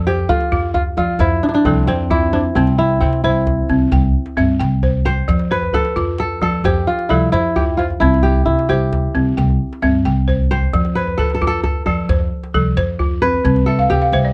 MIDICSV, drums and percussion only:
0, 0, Header, 1, 2, 480
1, 0, Start_track
1, 0, Tempo, 453515
1, 2715, Time_signature, 12, 3, 24, 8
1, 15169, End_track
2, 0, Start_track
2, 0, Title_t, "Djembe"
2, 196, Note_on_c, 9, 63, 53
2, 302, Note_off_c, 9, 63, 0
2, 309, Note_on_c, 9, 64, 72
2, 415, Note_off_c, 9, 64, 0
2, 430, Note_on_c, 9, 62, 53
2, 536, Note_off_c, 9, 62, 0
2, 550, Note_on_c, 9, 63, 65
2, 656, Note_off_c, 9, 63, 0
2, 791, Note_on_c, 9, 62, 67
2, 791, Note_on_c, 9, 64, 66
2, 896, Note_off_c, 9, 62, 0
2, 896, Note_off_c, 9, 64, 0
2, 1027, Note_on_c, 9, 62, 20
2, 1027, Note_on_c, 9, 63, 69
2, 1132, Note_off_c, 9, 62, 0
2, 1132, Note_off_c, 9, 63, 0
2, 1261, Note_on_c, 9, 62, 77
2, 1261, Note_on_c, 9, 64, 73
2, 1367, Note_off_c, 9, 62, 0
2, 1367, Note_off_c, 9, 64, 0
2, 1387, Note_on_c, 9, 63, 48
2, 1493, Note_off_c, 9, 63, 0
2, 1628, Note_on_c, 9, 62, 46
2, 1734, Note_off_c, 9, 62, 0
2, 1745, Note_on_c, 9, 63, 70
2, 1745, Note_on_c, 9, 64, 64
2, 1851, Note_off_c, 9, 63, 0
2, 1851, Note_off_c, 9, 64, 0
2, 1985, Note_on_c, 9, 62, 64
2, 2091, Note_off_c, 9, 62, 0
2, 2224, Note_on_c, 9, 62, 19
2, 2224, Note_on_c, 9, 63, 65
2, 2224, Note_on_c, 9, 64, 69
2, 2329, Note_off_c, 9, 62, 0
2, 2329, Note_off_c, 9, 63, 0
2, 2329, Note_off_c, 9, 64, 0
2, 2466, Note_on_c, 9, 62, 63
2, 2571, Note_off_c, 9, 62, 0
2, 2591, Note_on_c, 9, 63, 51
2, 2697, Note_off_c, 9, 63, 0
2, 2710, Note_on_c, 9, 64, 65
2, 2815, Note_off_c, 9, 64, 0
2, 2829, Note_on_c, 9, 62, 54
2, 2935, Note_off_c, 9, 62, 0
2, 3073, Note_on_c, 9, 63, 54
2, 3179, Note_off_c, 9, 63, 0
2, 3192, Note_on_c, 9, 64, 65
2, 3298, Note_off_c, 9, 64, 0
2, 3309, Note_on_c, 9, 62, 51
2, 3415, Note_off_c, 9, 62, 0
2, 3435, Note_on_c, 9, 63, 63
2, 3541, Note_off_c, 9, 63, 0
2, 3670, Note_on_c, 9, 62, 58
2, 3670, Note_on_c, 9, 64, 59
2, 3776, Note_off_c, 9, 62, 0
2, 3776, Note_off_c, 9, 64, 0
2, 3908, Note_on_c, 9, 62, 22
2, 3908, Note_on_c, 9, 63, 69
2, 4013, Note_off_c, 9, 62, 0
2, 4013, Note_off_c, 9, 63, 0
2, 4146, Note_on_c, 9, 62, 74
2, 4146, Note_on_c, 9, 64, 73
2, 4252, Note_off_c, 9, 62, 0
2, 4252, Note_off_c, 9, 64, 0
2, 4267, Note_on_c, 9, 63, 50
2, 4373, Note_off_c, 9, 63, 0
2, 4506, Note_on_c, 9, 62, 50
2, 4612, Note_off_c, 9, 62, 0
2, 4627, Note_on_c, 9, 63, 66
2, 4627, Note_on_c, 9, 64, 63
2, 4733, Note_off_c, 9, 63, 0
2, 4733, Note_off_c, 9, 64, 0
2, 4870, Note_on_c, 9, 62, 62
2, 4976, Note_off_c, 9, 62, 0
2, 5110, Note_on_c, 9, 62, 21
2, 5110, Note_on_c, 9, 63, 62
2, 5110, Note_on_c, 9, 64, 63
2, 5216, Note_off_c, 9, 62, 0
2, 5216, Note_off_c, 9, 63, 0
2, 5216, Note_off_c, 9, 64, 0
2, 5353, Note_on_c, 9, 62, 62
2, 5459, Note_off_c, 9, 62, 0
2, 5478, Note_on_c, 9, 63, 50
2, 5584, Note_off_c, 9, 63, 0
2, 5593, Note_on_c, 9, 64, 70
2, 5699, Note_off_c, 9, 64, 0
2, 5707, Note_on_c, 9, 62, 53
2, 5813, Note_off_c, 9, 62, 0
2, 5953, Note_on_c, 9, 63, 56
2, 6059, Note_off_c, 9, 63, 0
2, 6064, Note_on_c, 9, 64, 71
2, 6170, Note_off_c, 9, 64, 0
2, 6189, Note_on_c, 9, 62, 55
2, 6295, Note_off_c, 9, 62, 0
2, 6309, Note_on_c, 9, 63, 72
2, 6415, Note_off_c, 9, 63, 0
2, 6545, Note_on_c, 9, 62, 64
2, 6651, Note_off_c, 9, 62, 0
2, 6787, Note_on_c, 9, 62, 23
2, 6787, Note_on_c, 9, 63, 72
2, 6893, Note_off_c, 9, 62, 0
2, 6893, Note_off_c, 9, 63, 0
2, 7030, Note_on_c, 9, 62, 71
2, 7030, Note_on_c, 9, 64, 75
2, 7136, Note_off_c, 9, 62, 0
2, 7136, Note_off_c, 9, 64, 0
2, 7156, Note_on_c, 9, 63, 52
2, 7261, Note_off_c, 9, 63, 0
2, 7397, Note_on_c, 9, 62, 48
2, 7503, Note_off_c, 9, 62, 0
2, 7522, Note_on_c, 9, 63, 67
2, 7522, Note_on_c, 9, 64, 65
2, 7628, Note_off_c, 9, 63, 0
2, 7628, Note_off_c, 9, 64, 0
2, 7766, Note_on_c, 9, 62, 67
2, 7872, Note_off_c, 9, 62, 0
2, 8005, Note_on_c, 9, 62, 22
2, 8005, Note_on_c, 9, 63, 64
2, 8005, Note_on_c, 9, 64, 67
2, 8111, Note_off_c, 9, 62, 0
2, 8111, Note_off_c, 9, 63, 0
2, 8111, Note_off_c, 9, 64, 0
2, 8245, Note_on_c, 9, 62, 66
2, 8351, Note_off_c, 9, 62, 0
2, 8365, Note_on_c, 9, 63, 52
2, 8471, Note_off_c, 9, 63, 0
2, 8492, Note_on_c, 9, 62, 21
2, 8492, Note_on_c, 9, 64, 68
2, 8598, Note_off_c, 9, 62, 0
2, 8598, Note_off_c, 9, 64, 0
2, 8615, Note_on_c, 9, 62, 55
2, 8721, Note_off_c, 9, 62, 0
2, 8847, Note_on_c, 9, 63, 56
2, 8953, Note_off_c, 9, 63, 0
2, 8964, Note_on_c, 9, 64, 66
2, 9070, Note_off_c, 9, 64, 0
2, 9090, Note_on_c, 9, 62, 54
2, 9196, Note_off_c, 9, 62, 0
2, 9212, Note_on_c, 9, 63, 63
2, 9318, Note_off_c, 9, 63, 0
2, 9333, Note_on_c, 9, 62, 19
2, 9439, Note_off_c, 9, 62, 0
2, 9448, Note_on_c, 9, 62, 68
2, 9448, Note_on_c, 9, 64, 63
2, 9553, Note_off_c, 9, 62, 0
2, 9553, Note_off_c, 9, 64, 0
2, 9568, Note_on_c, 9, 62, 20
2, 9674, Note_off_c, 9, 62, 0
2, 9686, Note_on_c, 9, 63, 75
2, 9792, Note_off_c, 9, 63, 0
2, 9928, Note_on_c, 9, 62, 71
2, 9928, Note_on_c, 9, 64, 70
2, 10034, Note_off_c, 9, 62, 0
2, 10034, Note_off_c, 9, 64, 0
2, 10051, Note_on_c, 9, 62, 23
2, 10051, Note_on_c, 9, 63, 52
2, 10156, Note_off_c, 9, 62, 0
2, 10156, Note_off_c, 9, 63, 0
2, 10294, Note_on_c, 9, 62, 48
2, 10400, Note_off_c, 9, 62, 0
2, 10410, Note_on_c, 9, 62, 21
2, 10410, Note_on_c, 9, 63, 67
2, 10410, Note_on_c, 9, 64, 68
2, 10516, Note_off_c, 9, 62, 0
2, 10516, Note_off_c, 9, 63, 0
2, 10516, Note_off_c, 9, 64, 0
2, 10645, Note_on_c, 9, 62, 63
2, 10751, Note_off_c, 9, 62, 0
2, 10888, Note_on_c, 9, 63, 64
2, 10888, Note_on_c, 9, 64, 65
2, 10994, Note_off_c, 9, 63, 0
2, 10994, Note_off_c, 9, 64, 0
2, 11130, Note_on_c, 9, 62, 62
2, 11236, Note_off_c, 9, 62, 0
2, 11247, Note_on_c, 9, 63, 47
2, 11353, Note_off_c, 9, 63, 0
2, 11361, Note_on_c, 9, 64, 65
2, 11467, Note_off_c, 9, 64, 0
2, 11481, Note_on_c, 9, 62, 48
2, 11587, Note_off_c, 9, 62, 0
2, 11719, Note_on_c, 9, 63, 54
2, 11825, Note_off_c, 9, 63, 0
2, 11841, Note_on_c, 9, 64, 65
2, 11947, Note_off_c, 9, 64, 0
2, 11959, Note_on_c, 9, 62, 51
2, 12065, Note_off_c, 9, 62, 0
2, 12079, Note_on_c, 9, 63, 68
2, 12185, Note_off_c, 9, 63, 0
2, 12317, Note_on_c, 9, 62, 65
2, 12317, Note_on_c, 9, 64, 59
2, 12423, Note_off_c, 9, 62, 0
2, 12423, Note_off_c, 9, 64, 0
2, 12560, Note_on_c, 9, 62, 22
2, 12560, Note_on_c, 9, 63, 76
2, 12666, Note_off_c, 9, 62, 0
2, 12666, Note_off_c, 9, 63, 0
2, 12799, Note_on_c, 9, 62, 77
2, 12799, Note_on_c, 9, 64, 74
2, 12905, Note_off_c, 9, 62, 0
2, 12905, Note_off_c, 9, 64, 0
2, 12919, Note_on_c, 9, 63, 56
2, 13025, Note_off_c, 9, 63, 0
2, 13161, Note_on_c, 9, 62, 51
2, 13267, Note_off_c, 9, 62, 0
2, 13278, Note_on_c, 9, 63, 71
2, 13278, Note_on_c, 9, 64, 70
2, 13384, Note_off_c, 9, 63, 0
2, 13384, Note_off_c, 9, 64, 0
2, 13518, Note_on_c, 9, 62, 70
2, 13624, Note_off_c, 9, 62, 0
2, 13754, Note_on_c, 9, 62, 22
2, 13754, Note_on_c, 9, 63, 66
2, 13754, Note_on_c, 9, 64, 71
2, 13860, Note_off_c, 9, 62, 0
2, 13860, Note_off_c, 9, 63, 0
2, 13860, Note_off_c, 9, 64, 0
2, 13996, Note_on_c, 9, 62, 69
2, 14102, Note_off_c, 9, 62, 0
2, 14117, Note_on_c, 9, 63, 55
2, 14223, Note_off_c, 9, 63, 0
2, 14232, Note_on_c, 9, 64, 75
2, 14338, Note_off_c, 9, 64, 0
2, 14353, Note_on_c, 9, 62, 58
2, 14458, Note_off_c, 9, 62, 0
2, 14588, Note_on_c, 9, 63, 59
2, 14694, Note_off_c, 9, 63, 0
2, 14717, Note_on_c, 9, 64, 74
2, 14823, Note_off_c, 9, 64, 0
2, 14834, Note_on_c, 9, 62, 53
2, 14940, Note_off_c, 9, 62, 0
2, 14953, Note_on_c, 9, 63, 76
2, 15059, Note_off_c, 9, 63, 0
2, 15169, End_track
0, 0, End_of_file